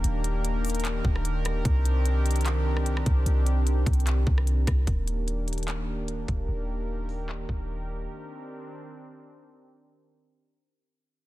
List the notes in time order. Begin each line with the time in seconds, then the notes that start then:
Already playing: D#3 A#3 D4 G4 A#4
0.04 D#1, closed hi-hat
0.24 closed hi-hat
0.45 closed hi-hat
0.65 closed hi-hat, open hi-hat
0.70 closed hi-hat
0.75 closed hi-hat
0.80 closed hi-hat
0.85 clap, closed hi-hat
1.05 D#1, kick
1.16 cross-stick
1.25 closed hi-hat
1.45 cross-stick, closed hi-hat
1.65 C2 C4 D4 G4, kick, closed hi-hat
1.85 closed hi-hat
2.05 closed hi-hat
2.26 closed hi-hat
2.31 closed hi-hat
2.36 closed hi-hat
2.41 closed hi-hat
2.46 clap, closed hi-hat
2.77 cross-stick
2.86 closed hi-hat
2.97 cross-stick
3.06 C2, kick, closed hi-hat
3.26 C2, closed hi-hat
3.46 closed hi-hat
3.67 closed hi-hat
3.86 C2, kick, closed hi-hat
3.93 closed hi-hat
4.00 closed hi-hat
4.07 clap, closed hi-hat
4.27 C2, kick
4.38 cross-stick
4.47 closed hi-hat
4.67 C2, kick, cross-stick, closed hi-hat
4.87 D#1 D#3 A#3 D4 G4 A#4, kick, closed hi-hat
5.08 closed hi-hat
5.28 closed hi-hat
5.48 closed hi-hat
5.53 closed hi-hat
5.58 closed hi-hat
5.63 closed hi-hat
5.68 clap, closed hi-hat
6.08 closed hi-hat
6.28 D#1, kick, closed hi-hat
6.48 D#1
7.09 open hi-hat
7.29 clap
7.49 D#1, kick
8.10 C4 D4